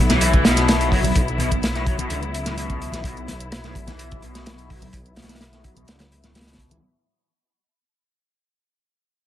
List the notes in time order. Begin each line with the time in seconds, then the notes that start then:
Already playing: B1 F#3 B3 E4
0.09 E3, snare, closed hi-hat, high conga
0.21 closed hi-hat
0.33 kick, closed hi-hat
0.45 B2, snare, closed hi-hat
0.56 snare, closed hi-hat
0.68 snare, closed hi-hat
0.81 closed hi-hat
0.92 F#3, kick, open hi-hat
1.04 closed hi-hat, high conga
1.15 B1, kick, closed hi-hat
1.28 closed hi-hat
1.38 B2, closed hi-hat, high conga
1.51 kick, closed hi-hat
1.63 snare, closed hi-hat
1.75 A2, snare, closed hi-hat
1.86 F#3, kick, closed hi-hat
1.98 B2, closed hi-hat, high conga
2.10 C#2 D3, closed hi-hat
2.23 closed hi-hat
2.34 closed hi-hat
2.46 A2, snare, closed hi-hat
2.58 B2, closed hi-hat
2.70 kick, closed hi-hat
2.82 closed hi-hat
2.92 B1 E3, snare, closed hi-hat, high conga
3.04 B1 B2, kick, closed hi-hat
3.17 closed hi-hat
3.28 snare, closed hi-hat, high conga
3.40 closed hi-hat
3.52 snare, closed hi-hat
3.64 A2, snare, closed hi-hat
3.75 kick, closed hi-hat
3.87 E3, snare, closed hi-hat, high conga
3.99 closed hi-hat
4.11 kick, closed hi-hat
4.22 B2, closed hi-hat
4.35 snare, closed hi-hat
4.46 snare, closed hi-hat
4.58 closed hi-hat
4.70 F#3, kick, open hi-hat
4.82 closed hi-hat, high conga
4.93 B1, kick, closed hi-hat
5.06 closed hi-hat
5.16 B2, snare, closed hi-hat, high conga
5.22 snare, closed hi-hat
5.29 snare, closed hi-hat
5.35 snare, closed hi-hat
5.41 snare, closed hi-hat
5.53 A2, snare, closed hi-hat
5.64 F#3, kick, closed hi-hat
5.76 B2, closed hi-hat, high conga
5.88 C#2 D3, snare, closed hi-hat
5.99 snare, closed hi-hat
6.12 closed hi-hat
6.24 A2, snare, closed hi-hat
6.35 C#2 B2, snare, closed hi-hat
6.41 snare, closed hi-hat
6.47 snare, closed hi-hat
6.53 snare, closed hi-hat
6.58 kick, closed hi-hat
6.71 E3, closed hi-hat, high conga